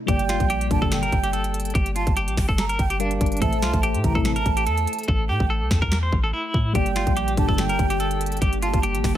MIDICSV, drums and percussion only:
0, 0, Header, 1, 2, 480
1, 0, Start_track
1, 0, Tempo, 416667
1, 96, Time_signature, 4, 2, 24, 8
1, 10568, End_track
2, 0, Start_track
2, 0, Title_t, "Drums"
2, 96, Note_on_c, 9, 36, 118
2, 96, Note_on_c, 9, 42, 83
2, 211, Note_off_c, 9, 36, 0
2, 211, Note_off_c, 9, 42, 0
2, 222, Note_on_c, 9, 42, 63
2, 335, Note_off_c, 9, 42, 0
2, 335, Note_on_c, 9, 42, 86
2, 336, Note_on_c, 9, 38, 99
2, 344, Note_on_c, 9, 26, 80
2, 450, Note_off_c, 9, 42, 0
2, 452, Note_off_c, 9, 38, 0
2, 459, Note_off_c, 9, 26, 0
2, 463, Note_on_c, 9, 36, 98
2, 463, Note_on_c, 9, 42, 58
2, 575, Note_off_c, 9, 42, 0
2, 575, Note_on_c, 9, 42, 87
2, 578, Note_off_c, 9, 36, 0
2, 690, Note_off_c, 9, 42, 0
2, 705, Note_on_c, 9, 42, 66
2, 815, Note_on_c, 9, 36, 102
2, 816, Note_off_c, 9, 42, 0
2, 816, Note_on_c, 9, 42, 65
2, 930, Note_off_c, 9, 36, 0
2, 931, Note_off_c, 9, 42, 0
2, 944, Note_on_c, 9, 36, 100
2, 1056, Note_on_c, 9, 38, 127
2, 1056, Note_on_c, 9, 42, 90
2, 1059, Note_off_c, 9, 36, 0
2, 1064, Note_on_c, 9, 26, 105
2, 1171, Note_off_c, 9, 38, 0
2, 1171, Note_off_c, 9, 42, 0
2, 1179, Note_off_c, 9, 26, 0
2, 1183, Note_on_c, 9, 42, 68
2, 1296, Note_off_c, 9, 42, 0
2, 1296, Note_on_c, 9, 36, 88
2, 1296, Note_on_c, 9, 42, 62
2, 1411, Note_off_c, 9, 36, 0
2, 1411, Note_off_c, 9, 42, 0
2, 1423, Note_on_c, 9, 42, 86
2, 1535, Note_off_c, 9, 42, 0
2, 1535, Note_on_c, 9, 42, 84
2, 1650, Note_off_c, 9, 42, 0
2, 1661, Note_on_c, 9, 42, 61
2, 1776, Note_off_c, 9, 42, 0
2, 1776, Note_on_c, 9, 42, 84
2, 1840, Note_off_c, 9, 42, 0
2, 1840, Note_on_c, 9, 42, 70
2, 1903, Note_off_c, 9, 42, 0
2, 1903, Note_on_c, 9, 42, 60
2, 1960, Note_off_c, 9, 42, 0
2, 1960, Note_on_c, 9, 42, 50
2, 2016, Note_off_c, 9, 42, 0
2, 2016, Note_on_c, 9, 36, 121
2, 2016, Note_on_c, 9, 42, 87
2, 2131, Note_off_c, 9, 36, 0
2, 2131, Note_off_c, 9, 42, 0
2, 2142, Note_on_c, 9, 42, 62
2, 2255, Note_off_c, 9, 42, 0
2, 2255, Note_on_c, 9, 42, 85
2, 2370, Note_off_c, 9, 42, 0
2, 2383, Note_on_c, 9, 36, 99
2, 2383, Note_on_c, 9, 42, 56
2, 2495, Note_off_c, 9, 42, 0
2, 2495, Note_on_c, 9, 42, 89
2, 2498, Note_off_c, 9, 36, 0
2, 2610, Note_off_c, 9, 42, 0
2, 2625, Note_on_c, 9, 42, 68
2, 2735, Note_on_c, 9, 36, 99
2, 2735, Note_on_c, 9, 46, 70
2, 2736, Note_on_c, 9, 38, 99
2, 2740, Note_off_c, 9, 42, 0
2, 2743, Note_on_c, 9, 26, 77
2, 2850, Note_off_c, 9, 36, 0
2, 2850, Note_off_c, 9, 46, 0
2, 2851, Note_off_c, 9, 38, 0
2, 2859, Note_off_c, 9, 26, 0
2, 2864, Note_on_c, 9, 36, 99
2, 2975, Note_on_c, 9, 42, 88
2, 2976, Note_on_c, 9, 38, 127
2, 2979, Note_off_c, 9, 36, 0
2, 2984, Note_on_c, 9, 26, 100
2, 3090, Note_off_c, 9, 42, 0
2, 3091, Note_off_c, 9, 38, 0
2, 3099, Note_off_c, 9, 26, 0
2, 3103, Note_on_c, 9, 42, 68
2, 3216, Note_off_c, 9, 42, 0
2, 3216, Note_on_c, 9, 36, 90
2, 3216, Note_on_c, 9, 42, 58
2, 3331, Note_off_c, 9, 36, 0
2, 3331, Note_off_c, 9, 42, 0
2, 3343, Note_on_c, 9, 42, 85
2, 3455, Note_off_c, 9, 42, 0
2, 3455, Note_on_c, 9, 42, 89
2, 3570, Note_off_c, 9, 42, 0
2, 3581, Note_on_c, 9, 42, 59
2, 3696, Note_off_c, 9, 42, 0
2, 3696, Note_on_c, 9, 42, 83
2, 3697, Note_on_c, 9, 36, 98
2, 3759, Note_off_c, 9, 42, 0
2, 3759, Note_on_c, 9, 42, 71
2, 3812, Note_off_c, 9, 36, 0
2, 3823, Note_off_c, 9, 42, 0
2, 3823, Note_on_c, 9, 42, 62
2, 3879, Note_off_c, 9, 42, 0
2, 3879, Note_on_c, 9, 42, 51
2, 3936, Note_off_c, 9, 42, 0
2, 3936, Note_on_c, 9, 36, 116
2, 3936, Note_on_c, 9, 42, 88
2, 4051, Note_off_c, 9, 36, 0
2, 4051, Note_off_c, 9, 42, 0
2, 4062, Note_on_c, 9, 42, 61
2, 4175, Note_off_c, 9, 42, 0
2, 4175, Note_on_c, 9, 42, 83
2, 4176, Note_on_c, 9, 38, 101
2, 4184, Note_on_c, 9, 26, 78
2, 4290, Note_off_c, 9, 42, 0
2, 4291, Note_off_c, 9, 38, 0
2, 4299, Note_off_c, 9, 26, 0
2, 4303, Note_on_c, 9, 36, 98
2, 4303, Note_on_c, 9, 42, 57
2, 4414, Note_off_c, 9, 42, 0
2, 4414, Note_on_c, 9, 42, 88
2, 4418, Note_off_c, 9, 36, 0
2, 4530, Note_off_c, 9, 42, 0
2, 4545, Note_on_c, 9, 42, 66
2, 4655, Note_off_c, 9, 42, 0
2, 4655, Note_on_c, 9, 36, 99
2, 4655, Note_on_c, 9, 42, 64
2, 4770, Note_off_c, 9, 36, 0
2, 4770, Note_off_c, 9, 42, 0
2, 4784, Note_on_c, 9, 36, 102
2, 4895, Note_on_c, 9, 42, 90
2, 4896, Note_on_c, 9, 38, 127
2, 4899, Note_off_c, 9, 36, 0
2, 4903, Note_on_c, 9, 26, 106
2, 5010, Note_off_c, 9, 42, 0
2, 5011, Note_off_c, 9, 38, 0
2, 5019, Note_off_c, 9, 26, 0
2, 5023, Note_on_c, 9, 42, 67
2, 5135, Note_off_c, 9, 42, 0
2, 5135, Note_on_c, 9, 42, 61
2, 5136, Note_on_c, 9, 36, 90
2, 5250, Note_off_c, 9, 42, 0
2, 5251, Note_off_c, 9, 36, 0
2, 5263, Note_on_c, 9, 42, 85
2, 5375, Note_off_c, 9, 42, 0
2, 5375, Note_on_c, 9, 42, 84
2, 5490, Note_off_c, 9, 42, 0
2, 5501, Note_on_c, 9, 42, 59
2, 5616, Note_off_c, 9, 42, 0
2, 5616, Note_on_c, 9, 42, 84
2, 5680, Note_off_c, 9, 42, 0
2, 5680, Note_on_c, 9, 42, 71
2, 5743, Note_off_c, 9, 42, 0
2, 5743, Note_on_c, 9, 42, 62
2, 5800, Note_off_c, 9, 42, 0
2, 5800, Note_on_c, 9, 42, 49
2, 5856, Note_on_c, 9, 36, 115
2, 5915, Note_off_c, 9, 42, 0
2, 5971, Note_off_c, 9, 36, 0
2, 6223, Note_on_c, 9, 36, 96
2, 6338, Note_off_c, 9, 36, 0
2, 6575, Note_on_c, 9, 36, 100
2, 6576, Note_on_c, 9, 38, 98
2, 6584, Note_on_c, 9, 26, 79
2, 6691, Note_off_c, 9, 36, 0
2, 6691, Note_off_c, 9, 38, 0
2, 6699, Note_off_c, 9, 26, 0
2, 6704, Note_on_c, 9, 36, 95
2, 6816, Note_on_c, 9, 38, 127
2, 6819, Note_off_c, 9, 36, 0
2, 6824, Note_on_c, 9, 26, 105
2, 6931, Note_off_c, 9, 38, 0
2, 6939, Note_off_c, 9, 26, 0
2, 7056, Note_on_c, 9, 36, 94
2, 7171, Note_off_c, 9, 36, 0
2, 7537, Note_on_c, 9, 36, 94
2, 7652, Note_off_c, 9, 36, 0
2, 7776, Note_on_c, 9, 36, 119
2, 7776, Note_on_c, 9, 42, 85
2, 7891, Note_off_c, 9, 36, 0
2, 7892, Note_off_c, 9, 42, 0
2, 7903, Note_on_c, 9, 42, 62
2, 8015, Note_off_c, 9, 42, 0
2, 8015, Note_on_c, 9, 42, 86
2, 8016, Note_on_c, 9, 38, 96
2, 8024, Note_on_c, 9, 26, 79
2, 8130, Note_off_c, 9, 42, 0
2, 8132, Note_off_c, 9, 38, 0
2, 8139, Note_off_c, 9, 26, 0
2, 8143, Note_on_c, 9, 36, 100
2, 8143, Note_on_c, 9, 42, 59
2, 8255, Note_off_c, 9, 42, 0
2, 8255, Note_on_c, 9, 42, 91
2, 8258, Note_off_c, 9, 36, 0
2, 8370, Note_off_c, 9, 42, 0
2, 8385, Note_on_c, 9, 42, 66
2, 8495, Note_off_c, 9, 42, 0
2, 8495, Note_on_c, 9, 36, 100
2, 8495, Note_on_c, 9, 42, 67
2, 8610, Note_off_c, 9, 42, 0
2, 8611, Note_off_c, 9, 36, 0
2, 8624, Note_on_c, 9, 36, 96
2, 8735, Note_on_c, 9, 42, 88
2, 8736, Note_on_c, 9, 38, 125
2, 8739, Note_off_c, 9, 36, 0
2, 8744, Note_on_c, 9, 26, 104
2, 8851, Note_off_c, 9, 38, 0
2, 8851, Note_off_c, 9, 42, 0
2, 8859, Note_off_c, 9, 26, 0
2, 8863, Note_on_c, 9, 42, 66
2, 8976, Note_off_c, 9, 42, 0
2, 8976, Note_on_c, 9, 36, 89
2, 8976, Note_on_c, 9, 42, 59
2, 9091, Note_off_c, 9, 36, 0
2, 9091, Note_off_c, 9, 42, 0
2, 9103, Note_on_c, 9, 42, 85
2, 9215, Note_off_c, 9, 42, 0
2, 9215, Note_on_c, 9, 42, 84
2, 9330, Note_off_c, 9, 42, 0
2, 9341, Note_on_c, 9, 42, 62
2, 9456, Note_off_c, 9, 42, 0
2, 9456, Note_on_c, 9, 42, 85
2, 9520, Note_off_c, 9, 42, 0
2, 9520, Note_on_c, 9, 42, 71
2, 9583, Note_off_c, 9, 42, 0
2, 9583, Note_on_c, 9, 42, 61
2, 9640, Note_off_c, 9, 42, 0
2, 9640, Note_on_c, 9, 42, 49
2, 9696, Note_off_c, 9, 42, 0
2, 9696, Note_on_c, 9, 36, 116
2, 9696, Note_on_c, 9, 42, 87
2, 9811, Note_off_c, 9, 36, 0
2, 9812, Note_off_c, 9, 42, 0
2, 9823, Note_on_c, 9, 42, 62
2, 9936, Note_off_c, 9, 42, 0
2, 9936, Note_on_c, 9, 42, 86
2, 10051, Note_off_c, 9, 42, 0
2, 10063, Note_on_c, 9, 36, 100
2, 10063, Note_on_c, 9, 42, 58
2, 10175, Note_off_c, 9, 42, 0
2, 10175, Note_on_c, 9, 42, 88
2, 10179, Note_off_c, 9, 36, 0
2, 10291, Note_off_c, 9, 42, 0
2, 10306, Note_on_c, 9, 42, 68
2, 10415, Note_on_c, 9, 36, 99
2, 10416, Note_on_c, 9, 38, 98
2, 10416, Note_on_c, 9, 46, 71
2, 10421, Note_off_c, 9, 42, 0
2, 10424, Note_on_c, 9, 26, 79
2, 10531, Note_off_c, 9, 36, 0
2, 10531, Note_off_c, 9, 38, 0
2, 10531, Note_off_c, 9, 46, 0
2, 10539, Note_off_c, 9, 26, 0
2, 10568, End_track
0, 0, End_of_file